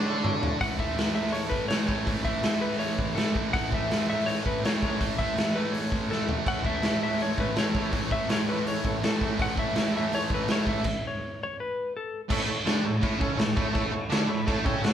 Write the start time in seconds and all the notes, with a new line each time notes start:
Already playing: D3 D4
0.05 E4 A4 C#5
0.23 E4 A4 C#5, mid tom
0.41 E4 A4 C#5, floor tom
0.58 A2 E3 F#5, kick, open hi-hat
0.63 A3
0.78 E3 A3 E5, kick
0.96 A2 E3, snare, open hi-hat
1.00 A3
1.13 A3 E5
1.18 E3
1.26 snare
1.33 C#5, open hi-hat
1.49 B4, kick, snare
1.68 A2 E3 C#5, snare, open hi-hat
1.73 A3
1.86 A3 C#5, kick
1.91 E3
2.05 A2 E3 A3, kick, open hi-hat
2.23 A3 E5, kick
2.27 E3
2.42 A2 E3 A3, snare, open hi-hat
2.61 E3 A3 B4
2.72 snare
2.79 C#5, open hi-hat
2.99 kick
3.15 A2 E3 A4, snare, open hi-hat
3.19 A3
3.33 A3, kick
3.37 E3
3.51 A2 E3 A3 F#5, kick, open hi-hat
3.71 E3 A3 E5, kick
3.88 A2 E3, snare, open hi-hat
3.92 A3
4.07 A3 E5
4.12 E3
4.20 snare
4.26 C#5, open hi-hat
4.46 B4, kick
4.61 A2 E3 A3, open hi-hat
4.66 C#5, snare
4.78 A3
4.83 E3 C#5, kick
4.97 A2 E3, kick
5.01 A3, open hi-hat
5.17 E3 A3 E5, kick
5.34 A2 E3
5.38 A3, snare, open hi-hat
5.53 E3 A3 B4
5.72 C#5, open hi-hat
5.92 kick, snare
6.09 A2 E3 A3 A4, snare
6.27 E3 A3, floor tom
6.46 A2 E3 A3 E4 A4 C#5 F#5, kick, crash
6.64 A3 E4 A4 C#5 E5, kick
6.68 E3
6.82 A2 E3 E4, snare, open hi-hat
6.86 A3 A4 C#5
6.99 E3 A3
7.03 E4 A4 C#5 E5
7.11 snare
7.20 E4 A4 C#5, open hi-hat
7.38 E4 A4 B4 C#5, kick, snare
7.55 A2 E3 E4 A4 C#5, snare, open hi-hat
7.59 A3
7.73 E3 A3 E4 A4 C#5, kick
7.92 A2 E3 A3 E4 A4 C#5, kick, open hi-hat
8.11 E3 A3 E4 A4 C#5 E5, kick
8.26 A2 E3 E4 A4 C#5, open hi-hat
8.30 A3 C#5, snare
8.46 E3 A3 E4 A4 B4 C#5
8.65 E4 A4 C#5, open hi-hat
8.85 E4 A4 C#5, kick
9.01 A2 E3 A3, snare, open hi-hat
9.05 E4 A4 C#5
9.20 E3 A3 E4 A4 C#5, kick
9.37 A2 E3 E4 A4 C#5, kick, open hi-hat
9.42 A3 F#5
9.56 E3 A3 E4 A4 C#5 E5, kick
9.73 A2 E3 A3 E4 A4 C#5, snare, open hi-hat
9.93 A3 E4 A4 C#5
9.97 E3 E5
10.12 E4 A4 C#5, open hi-hat
10.30 E4 A4 B4 C#5, kick
10.48 A2 E3 E4 A4 C#5, snare, open hi-hat
10.53 A3
10.66 E3 A3 E4 A4 C#5 E5, kick
10.84 kick, crash
11.07 C#5
11.43 C#5
11.60 B4
11.97 A4
12.29 A2 A3 E4 A4 C#5, kick, crash
12.48 E4 A4 C#5, muted distorted electric guitar stroke
12.66 D3 D4 E4 A4 C#5, snare, crash
12.83 A2 E4 A4 C#5
13.00 A2 A3 E4 A4 C#5, kick, crash
13.19 C#3 C#4 E4 A4 C#5, kick
13.36 A2 E4 A4 C#5, snare, crash
13.55 A2 A3 E4 A4 C#5, kick
13.73 A2 A3 E4 A4 C#5, kick, crash
13.92 E4 A4 C#5, muted distorted electric guitar stroke
14.10 D3 D4 E4 A4 C#5, snare, crash
14.28 A2 E4 A4 C#5 B5
14.46 A2 A3 E4 A4 C#5 A5, kick, crash
14.64 C#3 C#4 E4 A4 C#5 G5, kick
14.82 A2 E4 A4 C#5 F#5, snare, crash